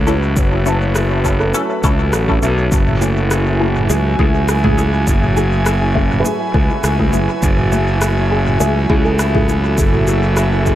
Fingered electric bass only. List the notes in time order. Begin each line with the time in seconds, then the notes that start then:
Already playing: C#2
0.37 F#1
1.84 C#2
2.13 A1
2.42 B1
2.72 F#1
3.90 C#2
4.19 C#2
5.07 F#1
6.54 C#2
6.84 C#2
7.13 F#1
7.43 F#1
8.60 C#2
8.90 C#2
9.78 F#1